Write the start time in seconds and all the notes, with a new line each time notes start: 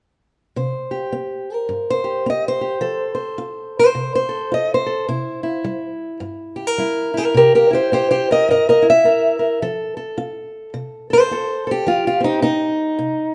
0.56 C3 C5
0.91 G4
1.12 C4
1.54 A#4
1.69 G2
1.90 C5
2.04 G4
2.26 C4 D#5
2.48 C5
2.61 G4
2.81 F3 A4
3.15 C5
3.38 F4
3.79 C5
3.95 C3
4.15 C5
4.29 A4
4.52 F4 D#5
4.74 C5
4.86 A4
5.09 C3 E4
5.43 E4
5.64 G3
6.20 G2
6.56 G4
6.67 A#4
6.78 G3 E4
7.14 E4 G4
7.18 A#4
7.34 C3 G4 A#4
7.55 G4 A#4
7.71 E4 G4 C5
7.92 C4 G4 C5
8.11 G4 C5
8.31 A#4 D#5
8.49 G2 A#4 D#5
8.69 A#4 D#5
8.82 E4
8.90 E5
9.04 C4 A#4
9.39 A#4
9.62 F3 A4
9.97 A4
10.18 F4
10.74 C3
11.10 A4 C5
11.31 F4 A4
11.67 A4
11.71 G4
11.87 F3 F4
12.07 F4
12.20 C4 D#4
12.42 C4 D#4
12.99 C3